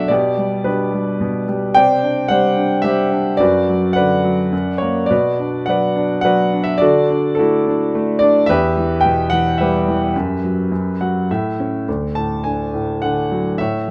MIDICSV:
0, 0, Header, 1, 2, 480
1, 0, Start_track
1, 0, Key_signature, 2, "minor"
1, 0, Tempo, 550964
1, 87, Time_signature, 3, 2, 24, 8
1, 2966, Tempo, 568182
1, 6326, Tempo, 552486
1, 8726, Tempo, 573614
1, 11874, End_track
2, 0, Start_track
2, 0, Title_t, "Grand piano"
2, 0, Program_c, 0, 0
2, 0, Control_c, 0, 64, 127
2, 0, Note_on_c, 0, 47, 47
2, 0, Note_on_c, 0, 54, 49
2, 0, Note_on_c, 0, 62, 44
2, 0, Note_on_c, 0, 66, 56
2, 0, Note_on_c, 0, 69, 61
2, 0, Note_on_c, 0, 74, 60
2, 0, Note_on_c, 0, 76, 75
2, 0, Note_on_c, 0, 78, 72
2, 71, Note_off_c, 0, 74, 0
2, 71, Note_on_c, 0, 74, 72
2, 89, Note_off_c, 0, 47, 0
2, 89, Note_on_c, 0, 47, 61
2, 98, Note_off_c, 0, 76, 0
2, 98, Control_c, 0, 64, 0
2, 100, Note_off_c, 0, 54, 0
2, 100, Note_off_c, 0, 78, 0
2, 102, Note_off_c, 0, 62, 0
2, 103, Note_off_c, 0, 66, 0
2, 104, Note_on_c, 0, 67, 59
2, 106, Note_off_c, 0, 69, 0
2, 259, Control_c, 0, 64, 127
2, 326, Note_on_c, 0, 55, 43
2, 550, Note_off_c, 0, 47, 0
2, 561, Note_on_c, 0, 71, 58
2, 563, Note_on_c, 0, 47, 46
2, 573, Note_off_c, 0, 67, 0
2, 577, Note_off_c, 0, 74, 0
2, 584, Note_on_c, 0, 62, 39
2, 586, Note_on_c, 0, 67, 40
2, 795, Note_off_c, 0, 55, 0
2, 808, Note_on_c, 0, 55, 43
2, 1038, Note_off_c, 0, 47, 0
2, 1051, Note_on_c, 0, 47, 51
2, 1254, Note_off_c, 0, 71, 0
2, 1265, Note_off_c, 0, 62, 0
2, 1266, Note_off_c, 0, 67, 0
2, 1280, Note_off_c, 0, 55, 0
2, 1293, Note_on_c, 0, 55, 48
2, 1517, Note_off_c, 0, 47, 0
2, 1520, Note_on_c, 0, 79, 97
2, 1525, Note_off_c, 0, 55, 0
2, 1534, Note_on_c, 0, 48, 66
2, 1538, Note_on_c, 0, 74, 63
2, 1539, Note_on_c, 0, 72, 60
2, 1544, Control_c, 0, 64, 0
2, 1674, Control_c, 0, 64, 127
2, 1770, Note_on_c, 0, 62, 42
2, 1990, Note_on_c, 0, 78, 87
2, 1998, Note_off_c, 0, 74, 0
2, 2001, Note_off_c, 0, 72, 0
2, 2002, Note_on_c, 0, 55, 49
2, 2011, Note_on_c, 0, 74, 53
2, 2014, Note_on_c, 0, 72, 62
2, 2015, Note_off_c, 0, 79, 0
2, 2227, Note_off_c, 0, 62, 0
2, 2240, Note_on_c, 0, 62, 44
2, 2455, Note_on_c, 0, 76, 85
2, 2460, Note_off_c, 0, 55, 0
2, 2466, Note_off_c, 0, 72, 0
2, 2473, Note_on_c, 0, 55, 51
2, 2474, Note_on_c, 0, 67, 63
2, 2479, Note_on_c, 0, 72, 56
2, 2487, Note_off_c, 0, 78, 0
2, 2689, Note_off_c, 0, 74, 0
2, 2704, Note_off_c, 0, 62, 0
2, 2717, Note_on_c, 0, 62, 45
2, 2928, Note_off_c, 0, 67, 0
2, 2931, Note_off_c, 0, 48, 0
2, 2931, Note_off_c, 0, 72, 0
2, 2937, Note_on_c, 0, 74, 82
2, 2947, Note_off_c, 0, 55, 0
2, 2956, Note_off_c, 0, 62, 0
2, 2964, Note_on_c, 0, 42, 59
2, 2965, Note_on_c, 0, 66, 58
2, 2965, Note_on_c, 0, 71, 51
2, 2968, Note_off_c, 0, 76, 0
2, 2978, Control_c, 0, 64, 0
2, 3114, Control_c, 0, 64, 127
2, 3209, Note_on_c, 0, 54, 38
2, 3411, Note_on_c, 0, 78, 80
2, 3422, Note_off_c, 0, 71, 0
2, 3425, Note_off_c, 0, 74, 0
2, 3434, Note_on_c, 0, 71, 60
2, 3437, Note_on_c, 0, 74, 54
2, 3447, Note_on_c, 0, 50, 40
2, 3640, Note_off_c, 0, 66, 0
2, 3663, Note_off_c, 0, 54, 0
2, 3676, Note_on_c, 0, 54, 47
2, 3885, Note_off_c, 0, 42, 0
2, 3904, Note_off_c, 0, 50, 0
2, 3908, Note_off_c, 0, 54, 0
2, 3913, Note_on_c, 0, 42, 53
2, 3924, Control_c, 0, 64, 0
2, 4052, Control_c, 0, 64, 127
2, 4121, Note_off_c, 0, 71, 0
2, 4123, Note_off_c, 0, 74, 0
2, 4129, Note_on_c, 0, 73, 75
2, 4161, Note_on_c, 0, 58, 47
2, 4165, Note_off_c, 0, 78, 0
2, 4367, Note_on_c, 0, 74, 72
2, 4386, Note_off_c, 0, 42, 0
2, 4395, Note_off_c, 0, 73, 0
2, 4397, Note_off_c, 0, 58, 0
2, 4402, Note_on_c, 0, 66, 53
2, 4404, Note_on_c, 0, 47, 50
2, 4404, Note_on_c, 0, 71, 51
2, 4413, Control_c, 0, 64, 0
2, 4546, Control_c, 0, 64, 127
2, 4648, Note_on_c, 0, 62, 38
2, 4869, Note_on_c, 0, 78, 72
2, 4885, Note_off_c, 0, 74, 0
2, 4887, Note_on_c, 0, 54, 40
2, 4891, Note_off_c, 0, 71, 0
2, 4899, Note_on_c, 0, 74, 58
2, 4904, Note_on_c, 0, 71, 52
2, 5094, Note_off_c, 0, 66, 0
2, 5112, Note_off_c, 0, 62, 0
2, 5125, Note_on_c, 0, 62, 49
2, 5323, Note_off_c, 0, 78, 0
2, 5339, Note_on_c, 0, 78, 83
2, 5354, Note_off_c, 0, 74, 0
2, 5355, Note_off_c, 0, 54, 0
2, 5357, Note_off_c, 0, 71, 0
2, 5367, Note_on_c, 0, 74, 53
2, 5368, Note_on_c, 0, 54, 57
2, 5370, Note_on_c, 0, 71, 59
2, 5597, Note_off_c, 0, 62, 0
2, 5609, Note_on_c, 0, 62, 46
2, 5696, Note_on_c, 0, 76, 81
2, 5722, Note_off_c, 0, 78, 0
2, 5802, Note_off_c, 0, 74, 0
2, 5812, Note_off_c, 0, 47, 0
2, 5813, Note_off_c, 0, 71, 0
2, 5815, Note_on_c, 0, 74, 83
2, 5831, Note_off_c, 0, 54, 0
2, 5834, Note_off_c, 0, 76, 0
2, 5840, Note_off_c, 0, 62, 0
2, 5847, Note_on_c, 0, 66, 64
2, 5850, Note_on_c, 0, 50, 61
2, 5850, Note_on_c, 0, 69, 62
2, 5856, Control_c, 0, 64, 0
2, 6018, Control_c, 0, 64, 127
2, 6088, Note_on_c, 0, 62, 45
2, 6286, Note_off_c, 0, 69, 0
2, 6298, Note_on_c, 0, 69, 72
2, 6318, Note_off_c, 0, 66, 0
2, 6325, Note_off_c, 0, 74, 0
2, 6331, Note_on_c, 0, 57, 45
2, 6331, Note_on_c, 0, 66, 54
2, 6334, Note_on_c, 0, 64, 56
2, 6571, Note_off_c, 0, 62, 0
2, 6584, Note_on_c, 0, 62, 53
2, 6805, Note_off_c, 0, 57, 0
2, 6818, Note_on_c, 0, 57, 58
2, 7018, Note_off_c, 0, 66, 0
2, 7019, Note_off_c, 0, 64, 0
2, 7027, Note_on_c, 0, 74, 86
2, 7043, Note_off_c, 0, 62, 0
2, 7056, Note_on_c, 0, 62, 57
2, 7058, Note_off_c, 0, 69, 0
2, 7254, Note_off_c, 0, 50, 0
2, 7266, Note_on_c, 0, 76, 89
2, 7276, Note_off_c, 0, 57, 0
2, 7282, Note_off_c, 0, 62, 0
2, 7283, Note_off_c, 0, 74, 0
2, 7293, Note_on_c, 0, 40, 66
2, 7293, Note_on_c, 0, 71, 70
2, 7295, Note_on_c, 0, 67, 68
2, 7298, Control_c, 0, 64, 0
2, 7464, Control_c, 0, 64, 127
2, 7535, Note_on_c, 0, 52, 48
2, 7737, Note_on_c, 0, 79, 82
2, 7768, Note_off_c, 0, 76, 0
2, 7778, Note_on_c, 0, 47, 47
2, 7974, Note_off_c, 0, 71, 0
2, 7975, Note_off_c, 0, 67, 0
2, 7990, Note_on_c, 0, 78, 92
2, 7999, Note_off_c, 0, 79, 0
2, 8002, Note_off_c, 0, 52, 0
2, 8015, Note_on_c, 0, 52, 51
2, 8234, Note_on_c, 0, 76, 67
2, 8245, Note_off_c, 0, 78, 0
2, 8258, Note_on_c, 0, 71, 55
2, 8259, Note_on_c, 0, 55, 51
2, 8260, Note_on_c, 0, 67, 46
2, 8485, Note_off_c, 0, 52, 0
2, 8498, Note_on_c, 0, 52, 51
2, 8695, Note_off_c, 0, 40, 0
2, 8704, Note_off_c, 0, 47, 0
2, 8719, Note_off_c, 0, 55, 0
2, 8726, Note_off_c, 0, 52, 0
2, 8736, Control_c, 0, 64, 0
2, 8738, Note_on_c, 0, 42, 59
2, 8896, Control_c, 0, 64, 127
2, 8972, Note_on_c, 0, 54, 37
2, 9190, Note_off_c, 0, 42, 0
2, 9196, Note_off_c, 0, 54, 0
2, 9205, Note_on_c, 0, 42, 53
2, 9208, Control_c, 0, 64, 0
2, 9376, Control_c, 0, 64, 127
2, 9449, Note_on_c, 0, 54, 48
2, 9449, Note_on_c, 0, 78, 55
2, 9648, Note_off_c, 0, 76, 0
2, 9660, Note_off_c, 0, 71, 0
2, 9661, Note_off_c, 0, 67, 0
2, 9675, Note_off_c, 0, 78, 0
2, 9676, Note_off_c, 0, 42, 0
2, 9684, Note_off_c, 0, 54, 0
2, 9698, Control_c, 0, 64, 0
2, 9700, Note_on_c, 0, 45, 63
2, 9701, Note_on_c, 0, 76, 58
2, 9839, Control_c, 0, 64, 127
2, 9944, Note_on_c, 0, 61, 47
2, 10150, Note_off_c, 0, 76, 0
2, 10168, Note_off_c, 0, 45, 0
2, 10174, Note_off_c, 0, 61, 0
2, 10182, Note_on_c, 0, 38, 48
2, 10186, Control_c, 0, 64, 0
2, 10320, Control_c, 0, 64, 127
2, 10407, Note_on_c, 0, 81, 77
2, 10424, Note_on_c, 0, 45, 36
2, 10644, Note_on_c, 0, 80, 64
2, 10659, Note_off_c, 0, 81, 0
2, 10663, Note_on_c, 0, 50, 42
2, 10884, Note_off_c, 0, 45, 0
2, 10897, Note_on_c, 0, 45, 43
2, 11127, Note_off_c, 0, 50, 0
2, 11130, Note_on_c, 0, 78, 67
2, 11140, Note_on_c, 0, 50, 44
2, 11144, Note_off_c, 0, 80, 0
2, 11377, Note_on_c, 0, 54, 42
2, 11581, Note_off_c, 0, 38, 0
2, 11590, Note_off_c, 0, 45, 0
2, 11599, Note_off_c, 0, 50, 0
2, 11603, Note_on_c, 0, 76, 77
2, 11606, Note_off_c, 0, 54, 0
2, 11620, Control_c, 0, 64, 0
2, 11620, Note_on_c, 0, 45, 53
2, 11623, Note_off_c, 0, 78, 0
2, 11623, Note_on_c, 0, 73, 47
2, 11744, Control_c, 0, 64, 127
2, 11874, Note_off_c, 0, 45, 0
2, 11874, Note_off_c, 0, 73, 0
2, 11874, Note_off_c, 0, 76, 0
2, 11874, End_track
0, 0, End_of_file